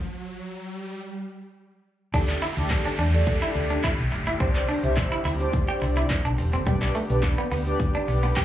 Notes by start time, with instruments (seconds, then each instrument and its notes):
Already playing: riser
2.14 fingered electric bass D2, supersaw synth D3 G3 A3 G4, analog polysynth D4 G4 A4 D5, clean electric guitar D4, kick, closed hi-hat, crash, downlifter, shaker
2.29 muted clean electric guitar stroke, clap, closed hi-hat, shaker
2.42 clean electric guitar E4, open hi-hat, shaker
2.57 fingered electric bass D2, analog polysynth D4 G4 A4 D5, closed hi-hat, shaker
2.70 muted clean electric guitar stroke, kick, clap, closed hi-hat, shaker
2.85 clean electric guitar D4, closed hi-hat, shaker
2.99 fingered electric bass E2, clean electric guitar D4, open hi-hat, shaker
3.14 analog polysynth D4 G4 A4 D5, closed hi-hat, shaker
3.27 kick, closed hi-hat, shaker
3.42 clean electric guitar E4, closed hi-hat, shaker
3.55 fingered electric bass D2, muted clean electric guitar stroke, open hi-hat, shaker
3.70 clean electric guitar D4, closed hi-hat, shaker
3.84 clean electric guitar E4, kick, clap, closed hi-hat, shaker
3.98 fingered electric bass B1, closed hi-hat, shaker
4.12 fingered electric bass F#1, muted clean electric guitar stroke, open hi-hat, shaker
4.27 fingered electric bass G1, clean electric guitar E4, closed hi-hat, shaker
4.40 fingered electric bass C2, clean electric guitar C4, analog polysynth D4 G4 C5 D5, kick, closed hi-hat, shaker
4.55 muted clean electric guitar stroke, clap, closed hi-hat, shaker
4.68 clean electric guitar D4, open hi-hat, shaker
4.83 fingered electric bass C2, analog polysynth D4 G4 C5 E5, closed hi-hat, shaker
4.97 muted clean electric guitar stroke, kick, clap, closed hi-hat, shaker
5.12 clean electric guitar E4, closed hi-hat, shaker
5.25 fingered electric bass D2, clean electric guitar E4, open hi-hat, shaker
5.40 analog polysynth D4 G4 C5 D5, closed hi-hat, shaker
5.53 kick, closed hi-hat, shaker
5.69 clean electric guitar G4, closed hi-hat, shaker
5.82 fingered electric bass C2, muted clean electric guitar stroke, open hi-hat, shaker
5.97 clean electric guitar E4, closed hi-hat, shaker
6.10 kick, clap, closed hi-hat, shaker
6.25 fingered electric bass B1, clean electric guitar D4, closed hi-hat, shaker
6.38 fingered electric bass E1, muted clean electric guitar stroke, open hi-hat, shaker
6.53 fingered electric bass F#1, clean electric guitar C4, closed hi-hat, shaker
6.66 fingered electric bass B1, clean electric guitar G3, supersaw synth B3 G4, analog polysynth D4 G4 B4 D5, kick, closed hi-hat, shaker
6.82 muted clean electric guitar stroke, clap, closed hi-hat, shaker
6.95 clean electric guitar A3, open hi-hat, shaker
7.10 fingered electric bass B1, analog polysynth D4 G4 B4 D5, closed hi-hat, shaker
7.23 muted clean electric guitar stroke, kick, clap, closed hi-hat, shaker
7.38 clean electric guitar B3, closed hi-hat, shaker
7.52 fingered electric bass D2, clean electric guitar B3, open hi-hat, shaker
7.66 analog polysynth D4 G4 B4 D5, closed hi-hat, shaker
7.80 kick, closed hi-hat, shaker
7.95 clean electric guitar D4, closed hi-hat, shaker
8.08 fingered electric bass B1, muted clean electric guitar stroke, open hi-hat, shaker
8.23 clean electric guitar B3, closed hi-hat, shaker
8.36 clean electric guitar G4, kick, clap, closed hi-hat, shaker